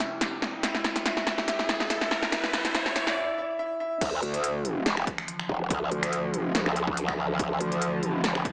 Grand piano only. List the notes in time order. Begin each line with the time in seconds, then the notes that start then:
Already playing: E4 E5
0.63 E4 E5
1.06 E4 E5
1.48 E4 E5
1.90 E4 E5
2.32 E4 E5
2.53 E4 E5
2.74 E4 E5
2.96 E4 E5
3.17 E4 E5
3.38 E4 E5
3.59 E4 E5
3.80 E4 E5